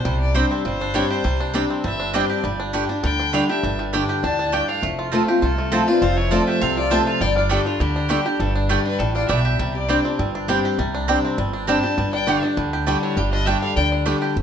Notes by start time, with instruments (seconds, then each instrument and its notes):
Already playing: five-string banjo D4 G4, fiddle C5
0.05 upright bass C2, steel-string acoustic guitar C3, five-string banjo G3
0.20 fiddle D5
0.34 steel-string acoustic guitar G3 C4 D4 G4, five-string banjo G3, mandolin C4 G4 D5 G5, fiddle C5
0.51 five-string banjo C4
0.65 upright bass G1, steel-string acoustic guitar G2, five-string banjo G3, fiddle C5
0.81 five-string banjo D4
0.94 steel-string acoustic guitar G3 C4 D4 G4, five-string banjo G3, mandolin C4 G4 D5 G5, fiddle C#5
1.10 five-string banjo G4, fiddle C5
1.24 upright bass C2, steel-string acoustic guitar C3, five-string banjo G3
1.40 five-string banjo D4
1.53 steel-string acoustic guitar G3 C4 D4 G4, five-string banjo G3, mandolin C4 G4 D5 G5
1.70 five-string banjo C4
1.84 upright bass G1, steel-string acoustic guitar G2, five-string banjo G3, fiddle E5
2.00 five-string banjo D4
2.14 steel-string acoustic guitar G3 C4 D4 G4, five-string banjo G3, mandolin C4 G4 D5 G5, fiddle D#5
2.30 five-string banjo G4, fiddle D5
2.44 upright bass G1, steel-string acoustic guitar G2, five-string banjo G3
2.60 five-string banjo D4
2.73 steel-string acoustic guitar D3 G3 D4 G4, five-string banjo G3, mandolin A3 G4 D5 G5
2.89 five-string banjo D4, steel-string acoustic guitar D4 G4
3.03 upright bass D2, steel-string acoustic guitar D3, five-string banjo G3, fiddle G5
3.20 five-string banjo D4
3.33 steel-string acoustic guitar D3 G3 D4 G4, five-string banjo G3, mandolin A3 G4 D5 G5, fiddle F5
3.49 steel-string acoustic guitar D4 G4, five-string banjo G4, fiddle E5
3.63 upright bass G1, steel-string acoustic guitar G2, five-string banjo D4
3.79 five-string banjo G3
3.93 steel-string acoustic guitar D3 G3 D4 G4, mandolin A3 G4 D5 G5, five-string banjo D4
4.09 five-string banjo G4
4.23 upright bass D2, steel-string acoustic guitar A2, five-string banjo D4, resonator guitar played with a steel bar D5, fiddle A5
4.39 five-string banjo D4
4.52 steel-string acoustic guitar G2, mandolin A3 G4 D5 G5, five-string banjo G4, resonator guitar played with a steel bar D5, fiddle G5
4.69 five-string banjo D4, resonator guitar played with a steel bar A4, fiddle F5
4.83 upright bass F1, steel-string acoustic guitar F2, five-string banjo A3
4.99 five-string banjo F4
5.12 steel-string acoustic guitar F3 A3 C4 F4, five-string banjo A3, mandolin C4 F4 C5 A5
5.28 steel-string acoustic guitar C4 F4, five-string banjo G4
5.41 upright bass C2, steel-string acoustic guitar C3, resonator guitar played with a steel bar C4, five-string banjo F4, fiddle A4
5.58 five-string banjo A3
5.72 steel-string acoustic guitar F3 A3 C4 F4, mandolin C4 F4 C5 A5, five-string banjo G4
5.87 steel-string acoustic guitar C4 F4, resonator guitar played with a steel bar D4, five-string banjo F4, fiddle B4
6.02 upright bass F1, steel-string acoustic guitar F2, five-string banjo C4, resonator guitar played with a steel bar F4, fiddle C5
6.17 five-string banjo A3, resonator guitar played with a steel bar E4, fiddle C#5
6.31 steel-string acoustic guitar F3 A3 C4 F4, mandolin C4 F4 C5 A5, five-string banjo F4, resonator guitar played with a steel bar F4, fiddle D5
6.47 five-string banjo G4, resonator guitar played with a steel bar G4, fiddle E5
6.61 upright bass C2, steel-string acoustic guitar C3, five-string banjo C4, resonator guitar played with a steel bar A4, fiddle F5
6.77 resonator guitar played with a steel bar F4, five-string banjo F4, fiddle D5
6.90 steel-string acoustic guitar F3 A3 C4 F4, mandolin C4 F4 C5 A5, five-string banjo G4, resonator guitar played with a steel bar A4, fiddle E5
7.07 five-string banjo F4, resonator guitar played with a steel bar A4, fiddle F5
7.21 upright bass G1, steel-string acoustic guitar G2, five-string banjo G3, resonator guitar played with a steel bar D5, fiddle G5
7.37 five-string banjo D4, resonator guitar played with a steel bar F4, fiddle D5
7.49 steel-string acoustic guitar D3 G3 D4 G4, five-string banjo G3, mandolin A3 G4 D5 G5, resonator guitar played with a steel bar D4, fiddle A4
7.66 resonator guitar played with a steel bar A3, five-string banjo D4, steel-string acoustic guitar D4 G4, fiddle F4
7.80 upright bass D2, steel-string acoustic guitar D3, five-string banjo G3, resonator guitar played with a steel bar D4, fiddle G4
7.96 five-string banjo D4
8.09 steel-string acoustic guitar D3 G3 D4 G4, five-string banjo G3, mandolin A3 G4 D5 G5
8.25 steel-string acoustic guitar D4 G4, five-string banjo G4
8.40 upright bass G1, steel-string acoustic guitar G2, five-string banjo G3, resonator guitar played with a steel bar D4, fiddle A4
8.55 five-string banjo D4, fiddle D4, muted resonator guitar played with a steel bar stroke
8.69 steel-string acoustic guitar D3 G3 D4 G4, five-string banjo G3, mandolin A3 G4 D5 G5, resonator guitar played with a steel bar D4, fiddle G4
8.86 five-string banjo D4, resonator guitar played with a steel bar D4, fiddle B4
8.99 upright bass A1, steel-string acoustic guitar A2, five-string banjo G3, resonator guitar played with a steel bar D4, fiddle A4
9.15 five-string banjo D4, resonator guitar played with a steel bar F4, fiddle D5
9.29 upright bass B1, steel-string acoustic guitar B2, five-string banjo G3, mandolin A3 G4 D5 G5, resonator guitar played with a steel bar G4, fiddle E5
9.45 five-string banjo G4
9.59 upright bass C2, steel-string acoustic guitar C3, five-string banjo G3
9.75 resonator guitar played with a steel bar G4, fiddle D5
9.89 steel-string acoustic guitar G3 C4 D4 G4, five-string banjo G3, mandolin C4 G4 D5 G5
10.05 five-string banjo C4, steel-string acoustic guitar D4 G4
10.19 upright bass G1, steel-string acoustic guitar G2, five-string banjo G3
10.35 five-string banjo D4
10.48 steel-string acoustic guitar G3 C4 D4 G4, five-string banjo G3, mandolin C4 G4 D5 G5
10.65 five-string banjo G4
10.79 upright bass C2, steel-string acoustic guitar C3, five-string banjo G3
10.95 five-string banjo D4
11.08 steel-string acoustic guitar G3 C4 D4 G4, five-string banjo G3, mandolin C4 G4 D5 G5
11.25 five-string banjo C4
11.38 upright bass G1, steel-string acoustic guitar G2, five-string banjo G3
11.53 five-string banjo D4
11.67 steel-string acoustic guitar G3 C4 D4 G4, five-string banjo G3, mandolin C4 G4 D5 G5, resonator guitar played with a steel bar C5, fiddle A5
11.83 steel-string acoustic guitar D4 G4, five-string banjo G4
11.98 upright bass G1, steel-string acoustic guitar G2, five-string banjo G3
12.13 five-string banjo D4, resonator guitar played with a steel bar D5, fiddle G5
12.27 steel-string acoustic guitar D3 G3 D4 G4, mandolin A3 G4 D5 G5, five-string banjo G4
12.43 five-string banjo D4, steel-string acoustic guitar D4 G4
12.57 upright bass D2, steel-string acoustic guitar D3, five-string banjo G3
12.73 five-string banjo G4
12.87 steel-string acoustic guitar D3 G3 D4 G4, five-string banjo G3, mandolin A3 G4 D5 G5
13.03 five-string banjo D4, resonator guitar played with a steel bar E4, fiddle C#5
13.17 upright bass G1, steel-string acoustic guitar G2, five-string banjo G3, resonator guitar played with a steel bar G4, fiddle D5
13.32 five-string banjo D4, resonator guitar played with a steel bar F4, fiddle D#5
13.46 steel-string acoustic guitar D3 G3 D4 G4, five-string banjo G3, mandolin A3 G4 D5 G5, resonator guitar played with a steel bar G4, fiddle E5
13.62 five-string banjo D4, resonator guitar played with a steel bar A4, fiddle F5
13.76 upright bass D2, steel-string acoustic guitar D3, five-string banjo G3, resonator guitar played with a steel bar D5, fiddle G5
13.92 five-string banjo D4
14.06 steel-string acoustic guitar D3 G3 D4 G4, five-string banjo G3, mandolin A3 G4 D5 G5
14.22 five-string banjo G4
14.36 upright bass F1, steel-string acoustic guitar F2